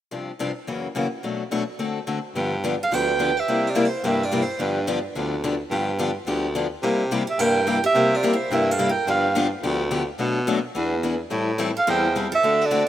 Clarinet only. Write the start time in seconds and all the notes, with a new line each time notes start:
2.83 F5
2.95 G5
3.40 E5
3.70 D5
3.88 C5
4.08 E5
4.25 D5
4.43 C5
4.62 B4
7.30 E5
7.41 G5
7.86 E5
8.16 D5
8.36 C5
8.54 E5
8.71 F5
8.91 G5
9.10 F5
11.78 F5
11.90 G5
12.35 E5
12.66 D5